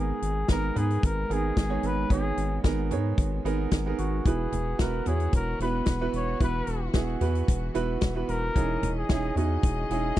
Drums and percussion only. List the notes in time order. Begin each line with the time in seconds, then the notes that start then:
0.22 closed hi-hat
0.48 kick, snare, closed hi-hat
0.76 closed hi-hat, floor tom
0.90 closed hi-hat
1.03 kick, closed hi-hat
1.31 closed hi-hat
1.57 kick, snare, closed hi-hat
1.83 closed hi-hat
2.10 kick, closed hi-hat
2.37 closed hi-hat
2.64 kick, snare, closed hi-hat
2.91 closed hi-hat, floor tom
3.18 kick, closed hi-hat
3.46 closed hi-hat
3.71 kick, snare, closed hi-hat
3.98 closed hi-hat
4.25 kick, closed hi-hat
4.53 closed hi-hat, floor tom
4.79 kick, snare, closed hi-hat
5.06 closed hi-hat, floor tom
5.20 closed hi-hat
5.33 kick, closed hi-hat
5.60 closed hi-hat
5.86 kick, snare, closed hi-hat
6.13 closed hi-hat
6.41 kick, closed hi-hat
6.67 closed hi-hat
6.94 kick, snare, closed hi-hat
7.21 closed hi-hat, floor tom
7.35 closed hi-hat
7.48 kick, closed hi-hat
7.75 closed hi-hat
8.01 kick, snare, closed hi-hat
8.29 closed hi-hat
8.56 kick, closed hi-hat
8.83 closed hi-hat, floor tom
9.09 kick, snare, closed hi-hat
9.37 closed hi-hat, floor tom
9.63 kick, closed hi-hat
9.90 closed hi-hat
10.16 closed hi-hat